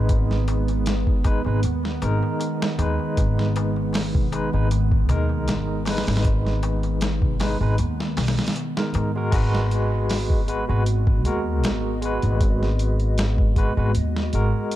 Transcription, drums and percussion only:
0.09 kick loud
0.09 closed hi-hat medium
0.09 darbuka tek soft
0.30 snare soft
0.30 darbuka tek soft
0.48 closed hi-hat medium
0.48 darbuka tek medium
0.68 closed hi-hat soft
0.68 darbuka tek soft
0.86 snare loud
0.86 closed hi-hat medium
0.86 darbuka tek soft
1.07 kick medium
1.07 darbuka tek soft
1.24 kick medium
1.24 closed hi-hat medium
1.24 darbuka tek medium
1.45 darbuka tek soft
1.63 closed hi-hat medium
1.63 darbuka tek soft
1.83 snare medium
1.83 darbuka tek soft
2.02 closed hi-hat medium
2.02 darbuka tek medium
2.23 darbuka tek soft
2.40 closed hi-hat medium
2.40 darbuka tek soft
2.60 snare loud
2.60 darbuka tek soft
2.79 closed hi-hat medium
2.79 darbuka tek medium
2.99 darbuka tek soft
3.17 kick loud
3.17 closed hi-hat medium
3.17 darbuka tek soft
3.37 snare soft
3.37 darbuka tek soft
3.56 closed hi-hat medium
3.56 darbuka tek medium
3.76 darbuka tek soft
3.93 snare loud
3.93 open hi-hat medium
3.93 darbuka tek soft
4.15 kick medium
4.15 darbuka tek soft
4.15 darbuka dum medium
4.32 closed hi-hat medium
4.32 darbuka tek medium
4.53 darbuka tek soft
4.71 closed hi-hat medium
4.71 darbuka tek soft
4.92 kick medium
4.92 darbuka tek soft
5.09 closed hi-hat medium
5.09 darbuka tek medium
5.09 darbuka dum medium
5.29 darbuka tek soft
5.48 snare loud
5.48 closed hi-hat medium
5.48 darbuka tek soft
5.68 darbuka tek soft
5.85 snare medium
5.85 open hi-hat medium
5.85 darbuka tek medium
5.97 snare medium
5.97 open hi-hat medium
6.06 snare medium
6.06 open hi-hat medium
6.06 darbuka tek soft
6.16 snare medium
6.16 open hi-hat medium
6.25 kick loud
6.25 closed hi-hat medium
6.25 darbuka tek soft
6.45 snare soft
6.45 darbuka tek soft
6.63 closed hi-hat medium
6.63 darbuka tek medium
6.83 closed hi-hat soft
6.83 darbuka tek soft
7.01 snare loud
7.01 closed hi-hat medium
7.01 darbuka tek soft
7.22 kick loud
7.22 darbuka tek soft
7.22 darbuka dum medium
7.40 snare loud
7.40 open hi-hat medium
7.40 darbuka tek medium
7.61 darbuka tek soft
7.78 closed hi-hat medium
7.78 darbuka tek medium
8.00 snare medium
8.00 darbuka tek soft
8.17 snare medium
8.17 open hi-hat medium
8.17 darbuka tek medium
8.27 snare medium
8.27 open hi-hat medium
8.38 snare medium
8.38 open hi-hat medium
8.38 darbuka tek soft
8.47 snare medium
8.47 open hi-hat medium
8.56 closed hi-hat medium
8.56 darbuka tek soft
8.77 snare loud
8.77 darbuka tek soft
8.94 closed hi-hat medium
8.94 darbuka tek medium
9.16 darbuka tek soft
9.32 kick loud
9.32 closed hi-hat medium
9.32 crash medium
9.55 snare medium
9.71 closed hi-hat medium
10.10 snare loud
10.10 open hi-hat medium
10.30 kick loud
10.48 closed hi-hat medium
10.86 closed hi-hat medium
11.07 kick loud
11.25 closed hi-hat medium
11.64 snare loud
11.64 closed hi-hat medium
12.02 closed hi-hat medium
12.22 closed hi-hat soft
12.41 kick loud
12.41 closed hi-hat medium
12.63 snare soft
12.79 closed hi-hat medium
13.00 closed hi-hat soft
13.18 snare loud
13.18 closed hi-hat medium
13.38 kick medium
13.56 kick medium
13.56 closed hi-hat medium
13.95 closed hi-hat medium
14.17 snare medium
14.33 closed hi-hat medium
14.71 closed hi-hat medium

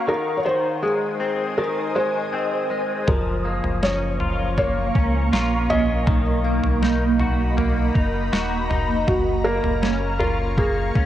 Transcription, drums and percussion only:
3.08 kick medium
3.08 floor tom medium
3.64 floor tom soft
3.83 snare medium
4.20 floor tom soft
4.58 kick medium
4.58 floor tom medium
4.95 kick medium
5.33 snare medium
5.70 floor tom medium
6.07 kick medium
6.07 floor tom medium
6.64 floor tom medium
6.83 snare medium
7.20 floor tom medium
7.58 floor tom medium
7.95 kick medium
8.33 snare medium
8.71 floor tom medium
9.08 kick medium
9.08 floor tom medium
9.64 floor tom medium
9.83 snare medium
10.21 floor tom medium
10.58 kick medium
10.58 floor tom medium
10.95 kick medium

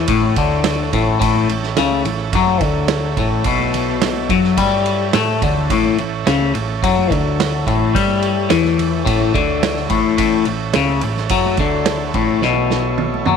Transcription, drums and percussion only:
0.08 kick loud
0.08 ride medium
0.22 high conga medium
0.36 kick medium
0.36 ride medium
0.64 snare loud
0.64 ride medium
0.93 kick medium
0.93 ride medium
0.93 low conga medium
1.21 kick medium
1.21 ride medium
1.21 low conga medium
1.35 high conga medium
1.49 ride medium
1.63 snare soft
1.77 snare loud
1.77 ride medium
1.91 high conga medium
2.05 ride medium
2.05 low conga medium
2.33 kick loud
2.33 ride medium
2.47 high conga medium
2.61 kick loud
2.61 ride medium
2.88 snare loud
2.88 ride medium
3.17 kick loud
3.17 ride medium
3.17 low conga medium
3.44 kick medium
3.44 ride medium
3.60 high conga medium
3.74 ride medium
3.74 low conga medium
4.02 snare loud
4.02 ride medium
4.17 high conga medium
4.29 kick medium
4.29 ride medium
4.29 low conga medium
4.44 snare soft
4.57 kick loud
4.57 ride medium
4.57 high conga medium
4.86 ride medium
5.13 snare loud
5.13 ride medium
5.13 high conga soft
5.28 high conga medium
5.42 kick loud
5.42 ride medium
5.42 low conga medium
5.57 low conga medium
5.70 kick loud
5.70 ride medium
5.70 low conga medium
5.86 high conga medium
5.98 ride medium
6.27 snare loud
6.27 ride medium
6.41 high conga medium
6.55 ride medium
6.55 low conga medium
6.83 kick medium
6.83 ride medium
6.98 high conga medium
7.11 kick loud
7.11 ride medium
7.40 snare loud
7.40 ride medium
7.67 kick loud
7.67 ride medium
7.67 low conga medium
7.95 kick loud
7.95 ride medium
7.95 low conga medium
8.08 high conga medium
8.22 ride medium
8.50 snare loud
8.50 ride medium
8.64 snare soft
8.64 high conga medium
8.78 ride medium
8.78 low conga medium
9.06 kick loud
9.06 ride medium
9.21 high conga medium
9.34 kick medium
9.34 ride medium
9.63 snare loud
9.63 ride medium
9.76 snare soft
9.90 kick medium
9.90 ride medium
9.90 low conga medium
10.18 kick loud
10.18 ride medium
10.18 low conga medium
10.45 ride medium
10.73 snare loud
10.73 ride medium
10.89 high conga medium
11.01 ride medium
11.01 low conga medium
11.17 snare soft
11.29 kick loud
11.29 ride medium
11.46 high conga medium
11.57 kick loud
11.57 ride medium
11.86 snare loud
11.86 ride medium
12.14 kick medium
12.14 ride medium
12.14 low conga medium
12.42 snare medium
12.42 low conga medium
12.57 high conga medium
12.70 snare medium
12.70 low conga medium
12.98 high tom medium
13.14 high conga medium
13.26 high tom medium
13.26 low conga medium

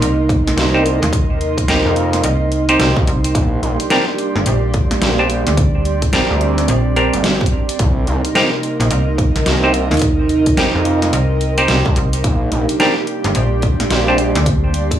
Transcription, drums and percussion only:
0.02 closed hi-hat medium
0.29 kick loud
0.29 closed hi-hat soft
0.47 snare medium
0.47 closed hi-hat medium
0.58 snare loud
0.58 closed hi-hat medium
0.86 closed hi-hat medium
1.03 snare medium
1.03 closed hi-hat medium
1.13 kick loud
1.13 closed hi-hat medium
1.41 closed hi-hat soft
1.58 kick medium
1.58 closed hi-hat medium
1.68 snare loud
1.68 closed hi-hat medium
1.96 closed hi-hat soft
2.13 snare soft
2.13 closed hi-hat medium
2.24 closed hi-hat medium
2.52 closed hi-hat soft
2.69 closed hi-hat medium
2.80 snare loud
2.80 closed hi-hat medium
2.97 kick loud
3.07 closed hi-hat medium
3.24 closed hi-hat medium
3.35 kick loud
3.35 closed hi-hat medium
3.63 closed hi-hat soft
3.80 closed hi-hat medium
3.90 snare loud
3.90 closed hi-hat medium
4.18 closed hi-hat soft
4.36 snare soft
4.46 closed hi-hat medium
4.74 kick loud
4.74 closed hi-hat soft
4.91 snare soft
4.91 closed hi-hat medium
5.02 snare loud
5.02 closed hi-hat medium
5.30 closed hi-hat medium
5.47 snare soft
5.47 closed hi-hat medium
5.57 kick loud
5.57 closed hi-hat medium
5.85 closed hi-hat soft
6.02 kick medium
6.02 closed hi-hat medium
6.13 snare loud
6.13 closed hi-hat medium
6.41 closed hi-hat soft
6.58 snare soft
6.58 closed hi-hat soft
6.68 closed hi-hat medium
6.96 closed hi-hat soft
7.13 closed hi-hat soft
7.24 snare loud
7.24 closed hi-hat medium
7.41 kick loud
7.46 closed hi-hat soft
7.69 closed hi-hat medium
7.79 kick loud
7.79 closed hi-hat medium
8.07 closed hi-hat soft
8.25 closed hi-hat soft
8.35 snare loud
8.35 closed hi-hat medium
8.63 closed hi-hat soft
8.80 snare soft
8.80 closed hi-hat soft
8.91 closed hi-hat medium
9.18 kick loud
9.18 closed hi-hat soft
9.36 snare soft
9.36 closed hi-hat soft
9.46 snare loud
9.46 closed hi-hat medium
9.74 closed hi-hat medium
9.91 snare medium
9.91 closed hi-hat soft
9.94 closed hi-hat soft
9.97 closed hi-hat soft
9.99 closed hi-hat soft
10.02 kick loud
10.02 closed hi-hat medium
10.29 closed hi-hat soft
10.46 kick medium
10.46 closed hi-hat soft
10.57 snare loud
10.57 closed hi-hat medium
10.85 closed hi-hat soft
11.02 snare soft
11.02 closed hi-hat soft
11.13 closed hi-hat medium
11.41 closed hi-hat soft
11.58 closed hi-hat soft
11.68 snare loud
11.68 closed hi-hat medium
11.86 kick loud
11.96 closed hi-hat medium
12.13 closed hi-hat medium
12.24 kick loud
12.24 closed hi-hat medium
12.52 closed hi-hat soft
12.69 closed hi-hat soft
12.80 snare loud
12.80 closed hi-hat medium
13.07 closed hi-hat soft
13.24 snare soft
13.24 closed hi-hat soft
13.35 closed hi-hat medium
13.62 kick loud
13.62 closed hi-hat soft
13.80 snare medium
13.80 closed hi-hat soft
13.90 snare loud
13.90 closed hi-hat medium
14.18 closed hi-hat medium
14.35 snare medium
14.35 closed hi-hat medium
14.46 kick loud
14.46 closed hi-hat medium
14.74 closed hi-hat soft
14.91 kick medium
14.91 closed hi-hat medium

